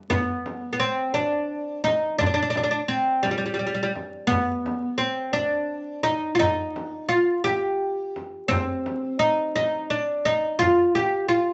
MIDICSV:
0, 0, Header, 1, 3, 480
1, 0, Start_track
1, 0, Tempo, 700935
1, 68, Time_signature, 6, 3, 24, 8
1, 7897, End_track
2, 0, Start_track
2, 0, Title_t, "Oud"
2, 0, Program_c, 0, 24
2, 68, Note_on_c, 0, 59, 81
2, 489, Note_off_c, 0, 59, 0
2, 498, Note_on_c, 0, 59, 57
2, 545, Note_on_c, 0, 60, 75
2, 547, Note_off_c, 0, 59, 0
2, 769, Note_off_c, 0, 60, 0
2, 780, Note_on_c, 0, 62, 78
2, 1236, Note_off_c, 0, 62, 0
2, 1259, Note_on_c, 0, 63, 83
2, 1493, Note_off_c, 0, 63, 0
2, 1496, Note_on_c, 0, 62, 86
2, 1542, Note_off_c, 0, 62, 0
2, 1550, Note_on_c, 0, 62, 60
2, 1594, Note_off_c, 0, 62, 0
2, 1602, Note_on_c, 0, 62, 72
2, 1652, Note_off_c, 0, 62, 0
2, 1661, Note_on_c, 0, 62, 65
2, 1705, Note_off_c, 0, 62, 0
2, 1713, Note_on_c, 0, 62, 72
2, 1753, Note_off_c, 0, 62, 0
2, 1761, Note_on_c, 0, 62, 59
2, 1796, Note_off_c, 0, 62, 0
2, 1805, Note_on_c, 0, 62, 68
2, 1847, Note_off_c, 0, 62, 0
2, 1855, Note_on_c, 0, 62, 60
2, 1914, Note_off_c, 0, 62, 0
2, 1974, Note_on_c, 0, 60, 73
2, 2210, Note_on_c, 0, 55, 74
2, 2228, Note_off_c, 0, 60, 0
2, 2259, Note_off_c, 0, 55, 0
2, 2267, Note_on_c, 0, 55, 52
2, 2304, Note_off_c, 0, 55, 0
2, 2312, Note_on_c, 0, 55, 53
2, 2359, Note_off_c, 0, 55, 0
2, 2367, Note_on_c, 0, 55, 45
2, 2415, Note_off_c, 0, 55, 0
2, 2423, Note_on_c, 0, 55, 54
2, 2451, Note_off_c, 0, 55, 0
2, 2459, Note_on_c, 0, 55, 46
2, 2502, Note_off_c, 0, 55, 0
2, 2510, Note_on_c, 0, 55, 50
2, 2556, Note_off_c, 0, 55, 0
2, 2564, Note_on_c, 0, 55, 46
2, 2613, Note_off_c, 0, 55, 0
2, 2621, Note_on_c, 0, 55, 61
2, 2676, Note_off_c, 0, 55, 0
2, 2925, Note_on_c, 0, 59, 93
2, 3409, Note_on_c, 0, 60, 79
2, 3430, Note_off_c, 0, 59, 0
2, 3647, Note_off_c, 0, 60, 0
2, 3650, Note_on_c, 0, 62, 84
2, 4129, Note_off_c, 0, 62, 0
2, 4132, Note_on_c, 0, 63, 88
2, 4317, Note_off_c, 0, 63, 0
2, 4348, Note_on_c, 0, 65, 68
2, 4375, Note_off_c, 0, 65, 0
2, 4378, Note_on_c, 0, 63, 91
2, 4850, Note_off_c, 0, 63, 0
2, 4852, Note_on_c, 0, 65, 82
2, 5093, Note_off_c, 0, 65, 0
2, 5095, Note_on_c, 0, 67, 87
2, 5614, Note_off_c, 0, 67, 0
2, 5809, Note_on_c, 0, 60, 87
2, 6295, Note_on_c, 0, 63, 83
2, 6313, Note_off_c, 0, 60, 0
2, 6536, Note_off_c, 0, 63, 0
2, 6544, Note_on_c, 0, 63, 80
2, 6781, Note_on_c, 0, 62, 77
2, 6793, Note_off_c, 0, 63, 0
2, 7021, Note_on_c, 0, 63, 89
2, 7032, Note_off_c, 0, 62, 0
2, 7249, Note_off_c, 0, 63, 0
2, 7252, Note_on_c, 0, 65, 93
2, 7496, Note_off_c, 0, 65, 0
2, 7499, Note_on_c, 0, 67, 84
2, 7725, Note_off_c, 0, 67, 0
2, 7728, Note_on_c, 0, 65, 83
2, 7897, Note_off_c, 0, 65, 0
2, 7897, End_track
3, 0, Start_track
3, 0, Title_t, "Frame drum"
3, 72, Note_on_c, 9, 64, 86
3, 140, Note_off_c, 9, 64, 0
3, 314, Note_on_c, 9, 64, 62
3, 382, Note_off_c, 9, 64, 0
3, 793, Note_on_c, 9, 64, 68
3, 861, Note_off_c, 9, 64, 0
3, 1276, Note_on_c, 9, 64, 63
3, 1345, Note_off_c, 9, 64, 0
3, 1512, Note_on_c, 9, 64, 90
3, 1580, Note_off_c, 9, 64, 0
3, 1750, Note_on_c, 9, 64, 69
3, 1818, Note_off_c, 9, 64, 0
3, 2229, Note_on_c, 9, 64, 64
3, 2298, Note_off_c, 9, 64, 0
3, 2708, Note_on_c, 9, 64, 57
3, 2777, Note_off_c, 9, 64, 0
3, 2950, Note_on_c, 9, 64, 84
3, 3018, Note_off_c, 9, 64, 0
3, 3190, Note_on_c, 9, 64, 63
3, 3259, Note_off_c, 9, 64, 0
3, 3668, Note_on_c, 9, 64, 62
3, 3736, Note_off_c, 9, 64, 0
3, 4149, Note_on_c, 9, 64, 57
3, 4218, Note_off_c, 9, 64, 0
3, 4389, Note_on_c, 9, 64, 85
3, 4457, Note_off_c, 9, 64, 0
3, 4629, Note_on_c, 9, 64, 62
3, 4697, Note_off_c, 9, 64, 0
3, 5108, Note_on_c, 9, 64, 62
3, 5177, Note_off_c, 9, 64, 0
3, 5588, Note_on_c, 9, 64, 53
3, 5657, Note_off_c, 9, 64, 0
3, 5829, Note_on_c, 9, 64, 91
3, 5898, Note_off_c, 9, 64, 0
3, 6067, Note_on_c, 9, 64, 64
3, 6136, Note_off_c, 9, 64, 0
3, 6550, Note_on_c, 9, 64, 62
3, 6619, Note_off_c, 9, 64, 0
3, 7030, Note_on_c, 9, 64, 57
3, 7098, Note_off_c, 9, 64, 0
3, 7273, Note_on_c, 9, 64, 82
3, 7341, Note_off_c, 9, 64, 0
3, 7513, Note_on_c, 9, 64, 64
3, 7581, Note_off_c, 9, 64, 0
3, 7897, End_track
0, 0, End_of_file